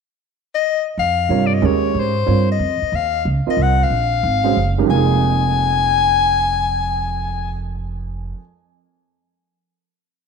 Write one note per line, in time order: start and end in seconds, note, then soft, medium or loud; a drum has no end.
0.55 0.84 D#5 medium
0.98 1.29 F2 medium
0.98 1.48 F5 medium
1.29 1.61 G2 medium
1.29 1.62 C3 medium
1.29 1.62 F4 soft
1.29 1.61 A#4 soft
1.29 1.62 C#5 medium
1.47 1.55 D5 medium
1.54 1.67 D#5 medium
1.62 1.94 D#2 medium
1.62 2.12 G#3 medium
1.62 2.12 C#4 medium
1.62 2.12 G4 medium
1.62 2.12 A#4 medium
1.62 2.01 C#5 medium
1.95 2.27 G#2 medium
2.00 2.51 C5 medium
2.26 2.59 G2 medium
2.26 2.46 C4 soft
2.26 2.46 F4 soft
2.26 2.46 A#4 soft
2.26 2.46 C#5 medium
2.51 2.97 D#5 medium
2.59 2.79 F2 medium
2.82 muted upright bass stroke soft
2.92 3.24 D#2 medium
2.92 3.27 F5 medium
3.25 3.45 C#2 medium
3.46 3.89 C4 medium
3.46 3.89 F4 soft
3.46 3.89 A#4 soft
3.46 3.89 D#5 medium
3.46 3.64 D#5 medium
3.46 muted upright bass stroke soft
3.57 3.89 C2 medium
3.62 3.85 F#5 medium
3.83 4.79 F5 medium
3.90 4.22 A#1 medium
4.23 4.55 G#1 medium
4.44 4.55 G#3 medium
4.44 4.55 C#4 medium
4.44 4.55 F#4 medium
4.44 4.56 C5 medium
4.57 4.88 F#1 medium
4.78 4.88 D#3 medium
4.78 4.88 G#3 soft
4.78 4.89 C#4 medium
4.78 4.89 G4 medium
4.78 4.89 A#4 medium
4.84 8.33 F2 medium
4.84 8.34 F3 soft
4.89 8.31 F1 medium
4.89 8.35 G#3 soft
4.89 8.36 A#3 medium
4.89 7.62 G#5 medium
4.93 8.37 D#4 soft
4.93 8.39 G#4 medium